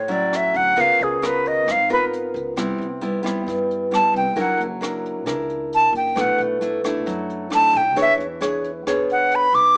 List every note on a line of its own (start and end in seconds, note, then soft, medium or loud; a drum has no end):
0.00 0.51 A1 medium
0.00 0.75 A2 medium
0.00 0.13 C#5 medium
0.08 0.73 F#3 medium
0.08 0.73 C#4 medium
0.08 0.73 E4 medium
0.08 0.38 D5 medium
0.08 closed hi-hat soft
0.33 0.58 E5 medium
0.33 cross-stick medium
0.33 closed hi-hat soft
0.54 0.78 D2 medium
0.54 0.82 F#5 medium
0.54 closed hi-hat soft
0.76 0.88 C#2 medium
0.76 1.64 C#3 medium
0.76 1.18 B3 medium
0.76 1.18 F4 medium
0.76 1.18 A#4 medium
0.76 kick medium
0.76 closed hi-hat soft
0.81 1.05 F5 medium
0.99 1.69 C#2 medium
0.99 closed hi-hat soft
1.03 1.27 G#4 medium
1.22 1.67 B3 medium
1.22 1.67 F4 medium
1.22 1.67 A#4 medium
1.22 1.49 B4 medium
1.22 cross-stick medium
1.22 closed hi-hat soft
1.46 1.73 D#5 medium
1.46 closed hi-hat soft
1.66 2.31 G#1 medium
1.66 2.54 G#2 medium
1.66 kick medium
1.66 cross-stick medium
1.66 closed hi-hat soft
1.71 1.92 F5 medium
1.89 2.53 B3 medium
1.89 2.53 F4 medium
1.89 2.54 A#4 medium
1.89 2.05 B4 medium
1.89 closed hi-hat soft
2.13 closed hi-hat soft
2.34 2.58 C#2 medium
2.34 closed hi-hat soft
2.56 2.68 C2 medium
2.56 3.44 C3 medium
2.56 2.86 G3 medium
2.56 2.86 B3 medium
2.56 2.86 E4 medium
2.56 kick medium
2.56 cross-stick medium
2.56 closed hi-hat soft
2.78 3.48 C2 medium
2.78 closed hi-hat soft
3.01 3.21 G3 medium
3.01 3.20 B3 medium
3.01 3.21 E4 medium
3.01 closed hi-hat soft
3.23 3.87 G3 medium
3.23 3.87 B3 medium
3.23 3.88 E4 medium
3.23 cross-stick medium
3.23 closed hi-hat soft
3.46 4.34 G2 medium
3.46 4.11 G2 medium
3.46 kick medium
3.46 closed hi-hat soft
3.71 closed hi-hat soft
3.91 4.35 G3 soft
3.91 4.35 B3 medium
3.91 4.35 E4 medium
3.91 4.14 A5 medium
3.91 cross-stick medium
3.91 closed hi-hat soft
4.14 4.38 C2 medium
4.14 4.43 G5 medium
4.14 closed hi-hat soft
4.36 4.48 F#1 medium
4.36 5.24 F#3 medium
4.36 4.65 D4 medium
4.36 4.65 E4 medium
4.36 4.66 A#4 medium
4.36 kick medium
4.36 closed hi-hat soft
4.41 4.61 F#5 medium
4.58 5.27 F#1 medium
4.58 closed hi-hat soft
4.81 5.22 D4 medium
4.81 5.23 E4 medium
4.81 5.23 A#4 medium
4.81 cross-stick medium
4.81 closed hi-hat soft
5.06 closed hi-hat soft
5.26 5.90 C#2 loud
5.26 6.13 D4 medium
5.26 6.13 E4 medium
5.26 6.13 A#4 medium
5.26 kick medium
5.26 cross-stick medium
5.26 closed hi-hat soft
5.50 closed hi-hat soft
5.73 5.94 A5 medium
5.73 closed hi-hat soft
5.93 6.19 F#1 medium
5.93 closed hi-hat soft
5.97 6.22 G5 medium
6.15 6.27 B1 medium
6.15 7.04 B2 medium
6.15 6.57 A3 medium
6.15 6.58 D4 medium
6.15 6.58 E4 medium
6.15 kick medium
6.15 cross-stick medium
6.15 closed hi-hat soft
6.21 6.41 F#5 medium
6.38 7.07 B1 medium
6.38 closed hi-hat soft
6.61 6.80 A3 medium
6.61 6.80 D4 medium
6.61 6.80 E4 medium
6.61 closed hi-hat soft
6.84 7.48 A3 medium
6.84 7.48 D4 medium
6.84 7.48 E4 medium
6.84 cross-stick medium
6.84 closed hi-hat soft
7.06 7.70 F#2 loud
7.06 7.94 F#3 medium
7.06 kick medium
7.06 closed hi-hat soft
7.30 closed hi-hat soft
7.50 7.81 A3 medium
7.50 7.81 D4 medium
7.50 7.82 E4 soft
7.50 cross-stick medium
7.50 closed hi-hat soft
7.55 7.78 A5 loud
7.73 7.97 B1 medium
7.73 7.98 G5 medium
7.73 closed hi-hat soft
7.96 8.07 E2 medium
7.96 8.84 E3 medium
7.96 8.25 D4 medium
7.96 8.25 G#4 medium
7.96 8.26 C#5 medium
7.96 kick medium
7.96 closed hi-hat soft
8.02 8.14 E5 medium
8.18 8.87 E2 medium
8.18 closed hi-hat soft
8.41 8.70 D4 medium
8.41 8.70 G#4 medium
8.41 8.70 C#5 medium
8.41 cross-stick medium
8.41 closed hi-hat soft
8.64 closed hi-hat soft
8.87 9.50 B1 medium
8.87 9.74 B2 medium
8.87 9.47 D4 medium
8.87 9.47 G#4 medium
8.87 9.47 C#5 medium
8.87 kick medium
8.87 cross-stick medium
8.87 closed hi-hat soft
9.10 9.37 F#5 medium
9.10 closed hi-hat soft
9.32 9.56 B5 medium
9.32 closed hi-hat soft
9.53 9.77 B1 medium
9.53 9.77 D6 loud
9.53 closed hi-hat soft